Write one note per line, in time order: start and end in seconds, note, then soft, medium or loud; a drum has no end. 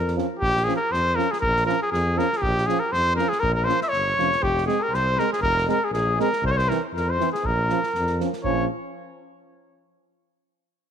0.00 0.20 F2 medium
0.00 0.15 A#4 medium
0.08 snare soft
0.16 0.26 F3 medium
0.16 0.27 C#4 medium
0.16 snare soft
0.39 0.69 A#1 medium
0.39 0.66 G4 loud
0.39 kick medium
0.57 snare soft
0.64 0.77 F3 medium
0.64 0.77 C#4 medium
0.64 0.76 G#4 medium
0.69 snare soft
0.76 0.93 A#4 medium
0.92 1.19 F2 medium
0.92 1.17 C5 medium
0.92 snare soft
1.16 1.26 F3 medium
1.16 1.28 C#4 medium
1.16 1.33 A#4 medium
1.16 snare soft
1.31 1.40 G#4 medium
1.31 snare soft
1.40 1.70 A#1 medium
1.40 1.64 A#4 medium
1.40 kick medium
1.57 snare soft
1.66 1.76 F3 medium
1.66 1.77 C#4 medium
1.66 1.79 A#4 medium
1.66 snare soft
1.82 1.91 G#4 medium
1.91 2.20 F2 medium
1.91 2.20 G#4 medium
1.91 snare soft
2.16 2.26 F3 medium
2.16 2.28 C#4 medium
2.16 2.39 A#4 medium
2.16 snare soft
2.33 snare soft
2.37 2.43 G#4 medium
2.42 2.70 A#1 medium
2.42 2.68 G4 medium
2.42 kick loud
2.58 snare soft
2.67 2.78 F3 medium
2.67 2.78 C#4 medium
2.67 2.81 G#4 medium
2.67 snare soft
2.80 2.94 A#4 medium
2.92 3.20 F2 medium
2.92 3.15 C5 loud
2.92 snare soft
3.16 3.28 F3 medium
3.16 3.26 C#4 medium
3.16 3.30 A#4 medium
3.16 snare soft
3.29 3.41 G#4 medium
3.29 snare soft
3.40 3.70 A#1 loud
3.40 3.54 A#4 loud
3.40 3.55 A#4 medium
3.40 kick medium
3.54 3.66 A#4 medium
3.54 3.69 A#4 medium
3.64 3.78 F3 medium
3.64 3.77 C#4 medium
3.64 3.82 C5 loud
3.64 3.86 C5 medium
3.69 snare soft
3.81 3.90 E5 medium
3.81 snare soft
3.86 4.44 C#5 loud
3.86 3.94 E5 medium
3.91 4.14 G1 medium
3.91 4.45 C#5 medium
3.91 snare soft
4.17 4.39 F1 medium
4.17 4.28 F3 medium
4.17 4.29 C#4 medium
4.17 snare soft
4.33 snare soft
4.40 4.68 F1 medium
4.40 4.66 G4 medium
4.40 4.65 G4 medium
4.40 kick medium
4.58 snare soft
4.66 4.78 G#3 medium
4.66 4.77 C4 medium
4.66 4.82 G#4 medium
4.66 4.84 G#4 medium
4.66 snare soft
4.80 4.92 A#4 medium
4.80 4.96 A#4 medium
4.90 5.18 C2 medium
4.90 5.18 C5 medium
4.94 5.21 C5 loud
4.94 snare soft
5.17 5.28 G#3 medium
5.17 5.27 C4 medium
5.17 5.31 A#4 medium
5.17 5.32 A#4 medium
5.17 snare soft
5.33 5.41 G#4 medium
5.33 5.43 G#4 medium
5.33 snare soft
5.41 5.69 F1 medium
5.41 5.66 A#4 loud
5.41 5.67 A#4 medium
5.41 kick medium
5.58 snare soft
5.67 5.77 G#3 medium
5.67 5.78 C4 medium
5.67 5.84 A#4 medium
5.67 snare soft
5.71 5.86 A#4 medium
5.82 5.93 G#4 medium
5.91 6.19 A#1 medium
5.91 6.16 G#4 medium
5.91 snare soft
5.96 6.18 G#4 medium
6.18 6.28 G#3 medium
6.18 6.29 C4 medium
6.18 6.43 A#4 medium
6.18 snare soft
6.33 snare soft
6.42 6.70 C2 loud
6.42 6.50 C5 loud
6.42 kick medium
6.47 6.53 C5 medium
6.47 6.58 C#5 medium
6.51 6.59 C#5 medium
6.56 6.70 C5 medium
6.56 6.70 C5 loud
6.56 snare soft
6.68 6.79 E3 medium
6.68 6.78 C4 medium
6.68 6.82 A#4 medium
6.68 snare soft
6.93 7.21 F2 medium
6.93 7.09 A#4 medium
6.93 snare soft
6.97 7.12 A#4 medium
7.07 7.32 C5 medium
7.18 7.29 E3 medium
7.18 7.28 C4 medium
7.18 snare soft
7.32 7.48 G#4 medium
7.32 7.46 G#4 medium
7.32 snare soft
7.44 7.72 A#1 medium
7.44 8.19 A#4 medium
7.44 8.20 A#4 medium
7.44 kick medium
7.69 7.79 F3 medium
7.69 7.80 C#4 medium
7.69 snare soft
7.83 snare soft
7.95 8.22 F2 medium
7.95 snare soft
8.07 snare soft
8.19 8.29 F3 medium
8.19 8.30 C#4 medium
8.19 snare soft
8.33 snare soft
8.44 8.67 A#1 medium
8.44 8.67 F3 medium
8.44 8.67 C#4 medium
8.44 8.67 C#5 medium
8.44 kick medium